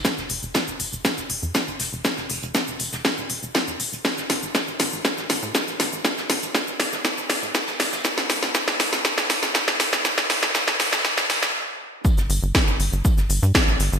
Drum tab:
HH |----o-------o-------o-----x-o---|----o-x-----o-------o-----x-o-x-|----o-------o-------o-x---x-o---|----o-x-----o-------o-------o---|
TB |x---x---x---x---x-------x---x---|x-------x---x---x---x---x---x---|x---x---x---x---x---x---x---x---|x-------x---x---x---x---x-x-x-x-|
SH |x-x-x-x-x-x-x-x-x-x-x-x-x-x-x-x-|x-x-x-x-x-x-x-x-x-x-x-x-x-x-x-x-|x-x-x-x-x-x-x-x-x-x-x-x-x-x-x-x-|x-x-x-x-x-x-x-x-x-x-x-x-x-x-x-x-|
SD |o-o-----o-------o-o-----o---o---|o-o-----o-----o-o-------o-------|o-o-o---o---o---o-o-o---o---o---|o-o-o---o---o-o-o---o---o-o-o-o-|
BD |o-------o-------o-------o-------|o-------o-------o-------o-------|o-------o-------o-------o-------|o-------o-------o-------o-------|

HH |----o-------o-------o-x-----o---|----o-x-----o-------o-----------|----o-------o-------o-x---x-o---|
TB |x---x---x---x---x---x---x---x---|x-------x---xxxx----x-----------|x---x---x---x---x---x---x---x---|
SH |x-x-x-x-x-x-x-x-x-x-x-x-x-x-x-x-|x-x-x-x-x-x-x-x-x-x-x-x---------|x-x-x-x-x-x-x-x-x-x-x-x-x-x-x-x-|
SD |o-o-o-o-o-o-o-o-o-o-o-o-o-o-o-o-|o-o-o-o-o-o-ooooo-o-o-o---------|--o-----o---------o-----o---o---|
BD |o-------o-------o-------o-------|o-------o-------o---------------|o-------o-------o-------o-------|